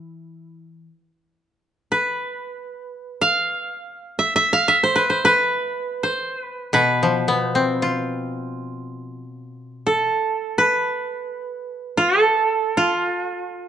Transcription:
Already playing: E3 E4
1.92 B4
3.21 F5
4.19 E5
4.36 E5
4.53 F5
4.68 E5
4.83 C5
4.96 B4
5.10 C5
5.25 B4
6.03 C5
6.41 B4
6.73 B2 B4
7.03 F3
7.28 B3
7.42 C5
7.55 C4 B4
7.80 F4 C5
7.94 B4
9.87 A4
10.58 B4
11.97 F4
12.21 A4
12.77 F4

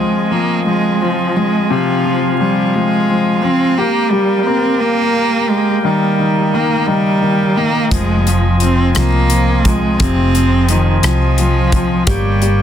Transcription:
Already playing: F3 G#3 C4 F4 D#5 G#5
0.31 F3 A#3
0.66 F3 G#3
1.01 F3
1.36 F3 G#3
1.70 C3 F3 F5
2.05 F3
2.40 F3 G3
2.75 F3 G#3
3.10 F3
3.43 F3 C4
3.78 A#3 G4 A#4 G5
4.11 G3
4.45 A#3 C4
4.80 A#3
5.50 G#3
5.84 D#3 G3 D#4
6.19 D#3
6.54 D#3 A#3
6.87 D#3 G3
7.22 D#3
7.56 D#3 A#3
7.91 F1 F3 G#3 C4 F4 D#5 G#5, kick, closed hi-hat
8.27 F3, closed hi-hat
8.60 F3 C4, closed hi-hat
8.95 C2 F3 A#3, cross-stick, closed hi-hat
9.30 F3, closed hi-hat
9.64 F3 G#3, kick, closed hi-hat
10.00 F1 C3 C4, kick, closed hi-hat
10.35 F3, closed hi-hat
10.69 D#3 F3, closed hi-hat
11.03 C2 F3, cross-stick, closed hi-hat
11.38 F3, closed hi-hat
11.72 F3, kick, closed hi-hat
12.07 G1 G3 A#3 G4 C#5 G5, kick, closed hi-hat
12.42 G3, closed hi-hat

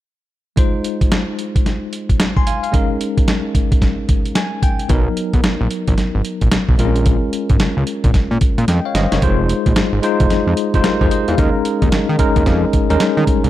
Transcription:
0.56 G#3 D#4 F4 C5, kick, closed hi-hat
0.84 closed hi-hat
1.01 kick, closed hi-hat
1.12 snare, closed hi-hat
1.39 closed hi-hat
1.56 kick, closed hi-hat
1.66 snare, closed hi-hat
1.93 closed hi-hat
2.09 kick, closed hi-hat
2.20 snare, closed hi-hat
2.36 G#5 C6, kick
2.47 F5 G#5, closed hi-hat
2.63 F5, closed hi-hat
2.72 G#3 C#4 D#4 A#4, kick, closed hi-hat
3.01 closed hi-hat
3.18 kick, closed hi-hat
3.28 snare, closed hi-hat
3.55 kick, closed hi-hat
3.72 kick, closed hi-hat
3.82 kick, snare, closed hi-hat
4.09 kick, closed hi-hat
4.25 closed hi-hat
4.35 G#5, snare, closed hi-hat
4.62 G5, kick, closed hi-hat
4.79 closed hi-hat
4.89 B1 F#3 B3 D#4 A#4, kick, closed hi-hat
5.17 closed hi-hat
5.33 B1, kick, closed hi-hat
5.44 snare, closed hi-hat
5.61 A#1
5.71 closed hi-hat
5.88 A#1, kick, closed hi-hat
5.98 snare, closed hi-hat
6.15 G#1
6.25 closed hi-hat
6.41 A#1, kick, closed hi-hat
6.52 B1, snare, closed hi-hat
6.69 B1, kick
6.78 A#1 G#3 C4 F4 A#4, closed hi-hat
6.85 C#4
6.96 closed hi-hat
7.06 kick, closed hi-hat
7.33 closed hi-hat
7.49 G#1, kick, closed hi-hat
7.60 C#2, snare, closed hi-hat
7.77 C#2
7.87 closed hi-hat
8.04 A#1, kick, closed hi-hat
8.14 kick, snare, closed hi-hat
8.31 A#2
8.41 kick, closed hi-hat
8.58 A#2, closed hi-hat
8.68 F2 D#5 G5, snare, closed hi-hat
8.85 C#5 F5
8.95 G1 C5 D#5, snare, closed hi-hat
9.12 F#1 A#4 C#5, snare, closed hi-hat
9.22 F1 G#3 D#4 F4 C5, kick, closed hi-hat
9.49 closed hi-hat
9.66 A#1, kick, closed hi-hat
9.76 G#1, snare, closed hi-hat
9.93 G#1
10.03 G#3 D#4 F4 C5, closed hi-hat
10.20 F1, kick, closed hi-hat
10.30 F2, snare, closed hi-hat
10.47 F2
10.57 closed hi-hat
10.74 F1 G#3 D#4 F4 C5, kick, closed hi-hat
10.84 G4 A#4, snare, closed hi-hat
11.01 F2 G#4 C5, kick
11.11 C5 D#5, closed hi-hat
11.28 E2 F5, closed hi-hat
11.37 D#2 G#3 C#4 D#4 A#4, kick, closed hi-hat
11.65 closed hi-hat
11.82 D#2, kick, closed hi-hat
11.92 D#3, snare, closed hi-hat
12.09 D#3
12.19 G#3 C#4 D#4 A#4, kick, closed hi-hat
12.36 D#2, kick, closed hi-hat
12.46 F2, kick, snare, closed hi-hat
12.73 kick, closed hi-hat
12.89 D#2 G3 C#4 D#4 A#4, closed hi-hat
12.96 G#3
13.00 snare, closed hi-hat
13.17 D#3
13.27 kick, closed hi-hat
13.44 C2, closed hi-hat

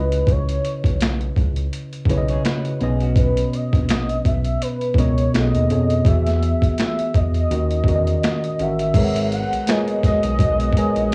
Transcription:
Already playing: C#2 C#3 C#4 E4 B4 D#5
0.12 closed hi-hat
0.27 C#2, kick, closed hi-hat
0.31 C#5
0.49 closed hi-hat
0.65 closed hi-hat
0.84 B1, kick, closed hi-hat
1.01 finger snap, snare, closed hi-hat
1.21 closed hi-hat
1.36 C#2, kick, closed hi-hat
1.56 closed hi-hat
1.73 closed hi-hat
1.93 closed hi-hat
2.05 B1 C#3 C#4, kick
2.09 E4 B4 C#5, closed hi-hat
2.18 D#5
2.28 G#4 C#5, closed hi-hat
2.45 F#4 B4, finger snap, snare, closed hi-hat
2.65 closed hi-hat
2.81 B1 B2 B3 C#4 D#4 G#4 B4 D#5, closed hi-hat
3.00 C#4 F#4, closed hi-hat
3.16 B4, kick, closed hi-hat
3.37 closed hi-hat
3.53 D#5, closed hi-hat
3.73 A#1, kick, closed hi-hat
3.89 finger snap, snare, closed hi-hat
4.09 closed hi-hat
4.25 B1 E5, kick, closed hi-hat
4.45 closed hi-hat
4.62 B4, closed hi-hat
4.81 closed hi-hat
4.94 C#2 B2 B3 C#5, kick
4.98 C#4 A#4 D#5, closed hi-hat
5.18 closed hi-hat
5.34 B1 B2 B3 C#4 G#4 A4 D#5, finger snap, snare, closed hi-hat
5.54 D#2, closed hi-hat
5.70 F2 B2 B3 C#4 G#4 A4 C#5, closed hi-hat
5.90 closed hi-hat
6.05 E2 E3 B3 F#4 G#4 E5, kick, closed hi-hat
6.27 snare, closed hi-hat
6.43 closed hi-hat
6.62 kick, closed hi-hat
6.78 E5, finger snap, snare, closed hi-hat
6.99 closed hi-hat
7.14 E2 D#5, kick, closed hi-hat
7.34 closed hi-hat
7.50 D#2 D#3 C#4 F#4 A#4 D#5, closed hi-hat
7.71 closed hi-hat
7.84 E2 D#3 C#4, kick
7.88 F#4 A#4 D5, closed hi-hat
7.95 D#5
8.07 closed hi-hat
8.23 D#5, finger snap, snare, closed hi-hat
8.44 closed hi-hat
8.59 A1 D#3 C#4 F#4 A#4 E5 F#5, closed hi-hat
8.79 closed hi-hat
8.94 G#1 G#3 B3 F#4 G#4 A#4 B4 C#5, kick, closed hi-hat, crash
8.98 E5
9.04 F#5
9.16 closed hi-hat
9.32 F#5, closed hi-hat
9.52 B1, closed hi-hat
9.67 G#3 G#4 A#4 B4 C#5 D#5 G#5, finger snap, snare, closed hi-hat
9.88 closed hi-hat
10.03 B1 D#5, kick, snare, closed hi-hat
10.23 B1, closed hi-hat
10.39 B1, kick, closed hi-hat
10.60 closed hi-hat
10.73 G#3 G#4, kick
10.77 A#4 B4 C#5 G#5, closed hi-hat
10.96 A#1, closed hi-hat

